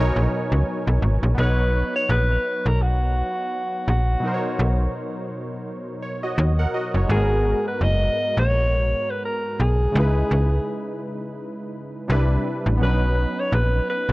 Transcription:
Already playing: fm bass B1, synth keys B2 F#3 D#4 A#4 B4 G#5
0.00 synth keys C#5
0.16 fm bass A#1
0.52 fm bass C#2
0.87 fm bass B1
1.02 fm bass G#1
1.23 fm bass A#1
1.34 fm bass B1, synth keys F#3 B3 D#4
1.39 alto saxophone B4, synth keys B4 C#5
1.95 alto saxophone C#5
2.09 fm bass A#1, alto saxophone B4
2.66 fm bass B1, alto saxophone A#4
2.82 alto saxophone F#4
3.88 fm bass A#1, alto saxophone F#4
4.20 synth keys B2 F#3 D#4
4.26 synth keys A#4 C5
4.34 synth keys C#5
4.59 fm bass B1
6.02 synth keys C#5
6.23 synth keys F#4 D#5
6.38 fm bass D#2
6.59 synth keys A#4 F#5
6.74 synth keys F#4 D#5
6.94 fm bass F#1, synth keys C#5
7.06 fm bass G#1, synth keys G#2 G#3 A#3
7.11 synth keys F#4 A#4, alto saxophone G#4
7.16 synth keys B3
7.68 alto saxophone B4
7.81 fm bass F#1, alto saxophone D#5
8.37 fm bass A#1, alto saxophone C#5
9.10 alto saxophone B4
9.25 alto saxophone A#4
9.60 fm bass B1, alto saxophone G#4
9.92 fm bass C#2, synth keys C#3 G#3 D#4
9.97 synth keys E4 B4
10.31 fm bass C#2
12.08 fm bass C2, synth keys C3 G3 D4 E4 B4
12.66 fm bass A1
12.77 fm bass B1, synth keys F#3 B3 C#4
12.83 synth keys D4 B4, alto saxophone B4
12.89 synth keys D#4
13.39 alto saxophone C#5
13.52 fm bass A#1, alto saxophone B4
13.90 alto saxophone B4
14.09 fm bass B1

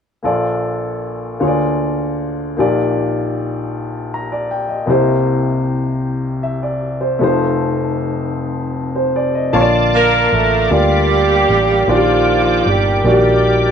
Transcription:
0.23 grand piano A#1 A#2 A#3 F4 A4 D5
1.39 grand piano D2 D3 A#3 F4 G#4 C#5
1.48 grand piano D5
2.57 grand piano A#1 A#2 A#3 D#4 G4 D5
4.14 grand piano A#5
4.32 grand piano D5
4.51 grand piano G5
4.69 grand piano D#5
4.86 grand piano C2 C3 A#3 E4 G4
4.90 grand piano C5
6.43 grand piano E5
6.63 grand piano D5
7.01 grand piano C5
7.19 grand piano F1 F2 A3 D#4 F4
7.24 grand piano C5
8.95 grand piano C5
9.16 grand piano D5
9.35 grand piano D#5
9.53 fingered electric bass A#1, grand piano D3 A#3 F4 C#5 A5, tonewheel organ D5 F5 A5 D6
9.61 grand piano D5
9.94 tenor saxophone A#3, horn section D4 F4 A#4
10.32 fingered electric bass A1, tenor saxophone A3
10.70 fingered electric bass D2, grand piano D3 A#3 F4 A#4 D5, tenor saxophone G3, horn section G4
10.74 horn section A#3
11.49 fingered electric bass A1
11.86 fingered electric bass A#1, grand piano A#2 D#3 A#3 F#4 D5, tenor saxophone F3, horn section F4, tonewheel organ A#4 D5 G5
11.90 horn section D4
11.95 grand piano G4
12.66 fingered electric bass G1, tenor saxophone G3, horn section G4
13.04 fingered electric bass A#1, grand piano D#3 A#3 F#4 D5, tenor saxophone G3, horn section D4 D#4
13.08 horn section G4, grand piano G4

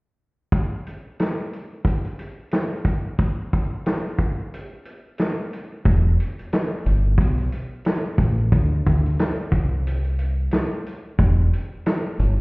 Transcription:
0.52 kick, closed hi-hat
0.87 closed hi-hat
1.19 snare, closed hi-hat
1.53 closed hi-hat
1.85 kick, closed hi-hat
2.04 closed hi-hat
2.19 closed hi-hat
2.51 snare, closed hi-hat
2.85 kick, closed hi-hat
3.19 kick, closed hi-hat
3.53 kick, closed hi-hat
3.86 snare, closed hi-hat
4.19 kick, closed hi-hat
4.54 closed hi-hat
4.85 closed hi-hat
5.18 snare, closed hi-hat
5.53 closed hi-hat
5.85 fingered electric bass E1, kick, closed hi-hat
6.20 closed hi-hat
6.39 closed hi-hat
6.53 snare, closed hi-hat
6.86 fingered electric bass G1, closed hi-hat
7.18 fingered electric bass B1, kick, closed hi-hat
7.38 closed hi-hat
7.52 closed hi-hat
7.85 snare, closed hi-hat
8.18 fingered electric bass A1, kick, closed hi-hat
8.52 fingered electric bass D2, kick, closed hi-hat
8.86 fingered electric bass D2, kick, closed hi-hat
9.06 closed hi-hat
9.19 snare, closed hi-hat
9.52 fingered electric bass C2, kick, closed hi-hat
9.87 closed hi-hat
10.04 closed hi-hat
10.19 closed hi-hat
10.51 snare, closed hi-hat
10.86 closed hi-hat
11.19 fingered electric bass E1, kick, closed hi-hat
11.53 closed hi-hat
11.86 snare, closed hi-hat
12.19 fingered electric bass G1, closed hi-hat

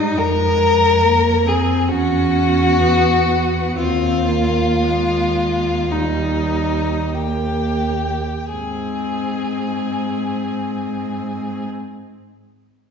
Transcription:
Already playing: cello G#2, viola G3, violin D#4 D#5
0.17 cello F2, viola G#3, violin A#4 A#5
1.03 viola A#3
1.47 viola C4, violin G#4 G#5
1.89 cello E2, viola C#4, violin F#4 F#5
2.79 viola B3
3.26 viola B3
3.76 cello D#2, viola C4, violin F4 F5
4.28 viola A#3
4.81 viola G#3
5.91 viola G3, violin D#4 D#5
7.13 viola A#3, violin G4 G5
8.51 cello G#2, viola C4, violin G#4 G#5

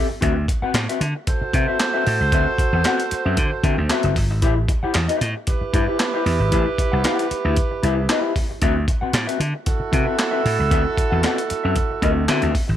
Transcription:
0.09 muted clean electric guitar stroke
0.21 slap bass D2, clean electric guitar C4 F#4 B4 E5, kick, closed hi-hat
0.35 muted clean electric guitar stroke
0.48 muted clean electric guitar stroke, kick, closed hi-hat
0.62 clean electric guitar C4 F#4 B4 F#5, muted slap bass stroke
0.74 slap bass A2, muted clean electric guitar stroke, snare, clap, closed hi-hat
0.89 clean electric guitar C4 F#4 B4 E5, closed hi-hat
1.01 slap bass D3, muted clean electric guitar stroke, closed hi-hat
1.15 muted clean electric guitar stroke
1.27 horn section F#4 A4 C5, muted clean electric guitar stroke, kick, closed hi-hat
1.41 muted slap bass stroke, muted clean electric guitar stroke
1.53 slap bass C3, clean electric guitar C4 F#4 B4 E5, kick, closed hi-hat
1.68 clean electric guitar C4 F#4 B4 E5
1.79 snare, clap, closed hi-hat
1.94 clean electric guitar C4 F#4 B4 E5
2.06 slap bass A2, muted clean electric guitar stroke, open hi-hat
2.20 slap bass C#2, muted clean electric guitar stroke
2.32 slap bass D2, clean electric guitar C4 F#4 B4 E5, kick, closed hi-hat
2.47 muted clean electric guitar stroke
2.58 muted clean electric guitar stroke, kick, closed hi-hat
2.73 slap bass E2, clean electric guitar C4 F#4 B4 F#5
2.84 clean electric guitar C4 F#4 B4 F#5, snare, clap, closed hi-hat
3.00 closed hi-hat
3.11 muted clean electric guitar stroke, muted slap bass stroke, closed hi-hat
3.25 slap bass F#2, clean electric guitar C4 F#4 B4 E5
3.37 slap bass D3, kick, closed hi-hat
3.51 muted clean electric guitar stroke
3.63 slap bass D3, clean electric guitar C4 F#4 B4 E5, kick, closed hi-hat
3.77 slap bass D2, muted clean electric guitar stroke
3.89 clean electric guitar C4 F#4 B4 E5, snare, clap, closed hi-hat
4.03 slap bass F#1, closed hi-hat
4.16 slap bass G1, muted clean electric guitar stroke, kick, open hi-hat
4.30 slap bass G#1, muted clean electric guitar stroke
4.42 slap bass A1, clean electric guitar E4 G4 C5 E5, kick, closed hi-hat
4.56 muted clean electric guitar stroke
4.68 muted clean electric guitar stroke, kick, closed hi-hat
4.83 clean electric guitar E4 G4 C5 F#5, muted slap bass stroke
4.94 slap bass E2, snare, clap, closed hi-hat
5.08 clean electric guitar E4 G4 C5 E5, closed hi-hat
5.21 slap bass A2, muted clean electric guitar stroke, closed hi-hat
5.36 muted clean electric guitar stroke
5.47 horn section E4 G4 B4, muted clean electric guitar stroke, kick, closed hi-hat
5.61 muted slap bass stroke, muted clean electric guitar stroke
5.73 slap bass G2, clean electric guitar E4 G4 C5 E5, kick, closed hi-hat
5.88 clean electric guitar E4 G4 C5 E5
5.99 snare, clap, closed hi-hat
6.14 clean electric guitar E4 G4 C5 E5
6.26 slap bass E2, open hi-hat
6.40 slap bass G#1, muted clean electric guitar stroke
6.52 slap bass A1, clean electric guitar E4 G4 C5 E5, kick, closed hi-hat
6.66 muted clean electric guitar stroke
6.78 muted clean electric guitar stroke, kick, closed hi-hat
6.92 slap bass C2, clean electric guitar E4 G4 C5 F#5
7.04 clean electric guitar E4 G4 C5 F#5, snare, clap, closed hi-hat
7.19 closed hi-hat
7.31 muted clean electric guitar stroke, muted slap bass stroke, closed hi-hat
7.44 slap bass D2, clean electric guitar E4 G4 C5 E5
7.56 kick, closed hi-hat
7.71 muted clean electric guitar stroke
7.83 slap bass C2, clean electric guitar E4 G4 C5 E5, closed hi-hat
7.97 muted clean electric guitar stroke
8.09 clean electric guitar E4 G4 C5 E5, snare, clap, closed hi-hat
8.36 muted clean electric guitar stroke, kick, open hi-hat
8.49 muted clean electric guitar stroke
8.62 slap bass D2, clean electric guitar C4 F#4 B4 E5, kick, closed hi-hat
8.76 muted clean electric guitar stroke
8.88 muted clean electric guitar stroke, kick, closed hi-hat
9.01 clean electric guitar C4 F#4 B4 F#5, muted slap bass stroke
9.13 slap bass A2, muted clean electric guitar stroke, snare, clap, closed hi-hat
9.27 clean electric guitar C4 F#4 B4 E5, closed hi-hat
9.40 slap bass D3, muted clean electric guitar stroke, closed hi-hat
9.54 muted clean electric guitar stroke
9.66 horn section E4 F#4 A4, muted clean electric guitar stroke, kick, closed hi-hat
9.80 muted slap bass stroke, muted clean electric guitar stroke
9.92 slap bass C3, clean electric guitar C4 F#4 B4 E5, kick, closed hi-hat
10.05 clean electric guitar C4 F#4 B4 E5
10.18 muted clean electric guitar stroke, snare, clap, closed hi-hat
10.31 clean electric guitar C4 F#4 B4 E5
10.44 slap bass A2, muted clean electric guitar stroke, open hi-hat
10.58 slap bass C#2, muted clean electric guitar stroke
10.70 slap bass D2, clean electric guitar C4 F#4 B4 E5, kick, closed hi-hat
10.84 muted clean electric guitar stroke
10.97 muted clean electric guitar stroke, kick, closed hi-hat
11.10 slap bass E2, clean electric guitar C4 F#4 B4 F#5
11.23 clean electric guitar C4 F#4 B4 F#5, snare, clap, closed hi-hat
11.38 closed hi-hat
11.50 muted clean electric guitar stroke, muted slap bass stroke, closed hi-hat
11.63 slap bass F#2, clean electric guitar C4 F#4 B4 E5
11.76 kick, closed hi-hat
11.91 muted clean electric guitar stroke
12.02 slap bass D2, clean electric guitar C4 F#4 B4 E5, kick, closed hi-hat
12.16 muted clean electric guitar stroke
12.28 slap bass D3, clean electric guitar C4 F#4 B4 E5, snare, clap, closed hi-hat
12.42 slap bass D2, closed hi-hat
12.53 muted clean electric guitar stroke, kick, open hi-hat
12.68 slap bass G#1, muted clean electric guitar stroke

